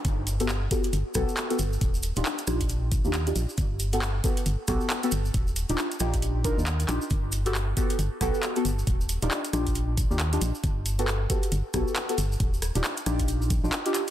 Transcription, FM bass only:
0.05 0.68 G1 loud
0.93 1.03 G1 medium
1.15 1.26 B1 loud
1.59 1.78 G1 medium
1.81 2.12 D#1 loud
2.17 2.24 D#1 loud
2.47 3.00 A#1 loud
3.05 3.33 D#2 medium
3.36 3.46 A#1 loud
3.58 4.21 G1 loud
4.46 4.56 G1 medium
4.68 4.78 B1 loud
5.12 5.30 G1 medium
5.34 5.65 D#1 loud
5.70 5.76 D#1 loud
6.00 6.53 A#1 loud
6.58 6.86 D#2 medium
6.89 6.99 A#1 loud
7.11 7.74 G1 loud
7.99 8.09 G1 medium
8.21 8.31 B1 loud
8.65 8.83 G1 medium
8.87 9.18 D#1 loud
9.22 9.29 D#1 loud
9.53 10.06 A#1 loud
10.11 10.39 D#2 medium
10.41 10.52 A#1 loud
10.64 11.27 G1 loud
11.52 11.62 G1 medium
11.74 11.84 B1 loud
12.18 12.36 G1 medium
12.40 12.71 D#1 loud
12.75 12.82 D#1 loud
13.06 13.50 A#1 loud
13.50 13.61 A#1 loud
13.64 13.71 A#1 loud

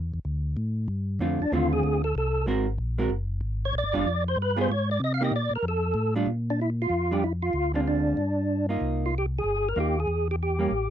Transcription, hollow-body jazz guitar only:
1.20 1.38 D3 medium
1.20 1.39 A3 medium
1.20 1.39 C4 medium
1.20 1.39 F4 medium
1.52 2.00 D3 medium
1.52 2.00 A3 medium
1.52 2.00 C4 medium
1.52 2.01 F4 medium
2.47 2.65 G#3 medium
2.47 2.65 C4 medium
2.47 2.66 F#4 medium
2.47 2.66 A#4 medium
2.98 3.09 G#3 medium
2.98 3.09 C4 medium
2.98 3.10 F#4 medium
2.98 3.10 A#4 medium
3.93 4.04 G3 medium
3.93 4.05 D4 medium
3.93 4.05 F4 loud
4.56 4.67 G3 medium
4.56 4.68 B3 medium
4.56 4.68 F4 medium
4.56 4.68 G#4 medium
5.21 5.31 A#3 medium
5.21 5.32 D#4 medium
5.21 5.32 G4 medium
6.16 6.26 G3 medium
6.16 6.27 D4 medium
6.16 6.27 F4 medium
7.11 7.22 G3 medium
7.11 7.22 D4 medium
7.11 7.22 F4 medium
7.74 8.15 D3 medium
7.74 8.16 G#3 medium
7.74 8.16 C4 medium
7.74 8.16 F4 medium
8.69 9.11 A#3 medium
8.69 9.11 D#4 medium
8.69 9.11 F4 medium
9.76 9.94 A#3 medium
9.76 9.95 D#4 medium
9.76 9.95 F4 medium
10.59 10.70 G3 medium
10.59 10.70 A#3 medium
10.59 10.71 C#4 medium

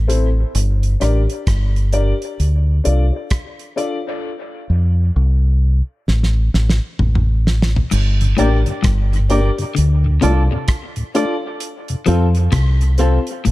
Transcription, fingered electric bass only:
0.00 0.43 A1 medium
0.55 0.95 G1 loud
1.02 1.26 A1 medium
1.48 2.12 G1 medium
2.40 2.79 D2 medium
2.86 3.10 C2 medium
4.70 5.10 F2 medium
5.16 5.80 C2 loud
6.09 6.48 A1 medium
6.54 6.79 A1 medium
7.00 7.80 A1 medium
7.93 8.33 G1 loud
8.39 8.63 A1 medium
8.85 9.49 G1 medium
9.78 10.17 D2 medium
10.24 10.48 C2 loud
12.08 12.47 F2 medium
12.53 13.17 C2 loud
13.47 13.52 A1 loud

